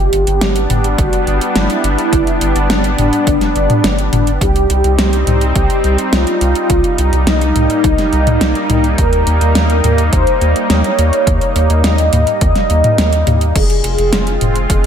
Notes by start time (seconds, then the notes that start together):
Already playing: G3 B3 D4 G4
0.13 G1, closed hi-hat
0.27 G1, closed hi-hat
0.41 G1, snare, closed hi-hat
0.56 closed hi-hat
0.70 G1, closed hi-hat, mid tom
0.84 closed hi-hat
0.98 G1 F#4, kick, closed hi-hat
1.13 closed hi-hat
1.27 G1, closed hi-hat
1.41 closed hi-hat
1.55 G1 E4, snare, closed hi-hat
1.70 closed hi-hat
1.84 G1, closed hi-hat
1.98 closed hi-hat
2.13 G1, kick, closed hi-hat
2.27 closed hi-hat
2.41 G1, closed hi-hat
2.55 G1, closed hi-hat
2.70 G1 D4, snare, closed hi-hat
2.84 closed hi-hat
2.98 G1, closed hi-hat, mid tom
3.13 closed hi-hat
3.27 G1, kick, closed hi-hat
3.41 snare, closed hi-hat
3.56 G1, closed hi-hat
3.70 closed hi-hat, mid tom
3.84 G1, snare, closed hi-hat
3.99 closed hi-hat
4.13 G1, closed hi-hat, mid tom
4.27 closed hi-hat
4.41 C2 G3 C4 D#4 G4, kick, closed hi-hat
4.56 closed hi-hat
4.70 C2, closed hi-hat
4.84 C2, closed hi-hat
4.98 C2, snare, closed hi-hat
5.13 closed hi-hat
5.27 C2, closed hi-hat, mid tom
5.41 closed hi-hat
5.55 C2 G4, kick, closed hi-hat
5.70 closed hi-hat
5.84 C2, closed hi-hat
5.98 closed hi-hat
6.12 C2 F4, snare, closed hi-hat
6.27 closed hi-hat
6.41 C2, closed hi-hat
6.55 closed hi-hat
6.69 C2 A#3, kick, closed hi-hat
6.84 closed hi-hat
6.98 C2, closed hi-hat
7.13 C2, closed hi-hat
7.27 C2 D#4, snare, closed hi-hat
7.41 closed hi-hat
7.56 C2, closed hi-hat, mid tom
7.70 closed hi-hat
7.84 C2, kick, closed hi-hat
7.98 snare, closed hi-hat
8.13 C2, closed hi-hat
8.27 closed hi-hat, mid tom
8.41 C2, snare, closed hi-hat
8.55 closed hi-hat
8.70 C2, closed hi-hat, mid tom
8.84 closed hi-hat
8.98 D#2 A#4, kick, closed hi-hat
9.13 closed hi-hat
9.27 D#2, closed hi-hat
9.41 D#2, closed hi-hat
9.55 D#2, snare, closed hi-hat
9.70 closed hi-hat
9.84 D#2, closed hi-hat, mid tom
9.98 closed hi-hat
10.12 D#2 C5, kick, closed hi-hat
10.27 closed hi-hat
10.41 D#2, closed hi-hat
10.56 closed hi-hat
10.70 D#2 C#5, snare, closed hi-hat
10.84 closed hi-hat
10.99 D#2, closed hi-hat
11.13 closed hi-hat
11.27 D#2, kick, closed hi-hat
11.41 closed hi-hat
11.56 D#2, closed hi-hat
11.70 D#2, closed hi-hat
11.84 D#2 D#5, snare, closed hi-hat
11.98 closed hi-hat
12.13 D#2, closed hi-hat, mid tom
12.27 closed hi-hat
12.41 D#2, kick, closed hi-hat
12.55 snare, closed hi-hat
12.70 D#2, closed hi-hat
12.84 closed hi-hat, mid tom
12.98 D#2, snare, closed hi-hat
13.13 closed hi-hat
13.27 D#2, closed hi-hat, mid tom
13.41 closed hi-hat
13.56 F1 G#3 C4 F4 G#4, kick, closed hi-hat, crash
13.70 closed hi-hat
13.84 F1, closed hi-hat
13.98 F1, closed hi-hat
14.13 F1, snare, closed hi-hat
14.27 closed hi-hat
14.41 F1, closed hi-hat, mid tom
14.56 closed hi-hat
14.70 F1 G#4, kick, closed hi-hat